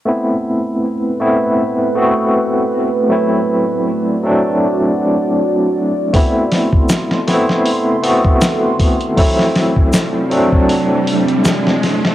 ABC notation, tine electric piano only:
X:1
M:4/4
L:1/8
Q:"Swing 16ths" 1/4=79
K:Ador
V:1 name="Tine electric piano"
[A,B,CE]3 [A,B,CE]2 [A,B,CF]3 | [F,A,CE]3 [F,A,CD]4- [F,A,CD] | [A,B,CE]3 [A,B,CE]2 [A,B,CF]3 | [F,A,CE]3 [F,A,CD]4- [F,A,CD] |]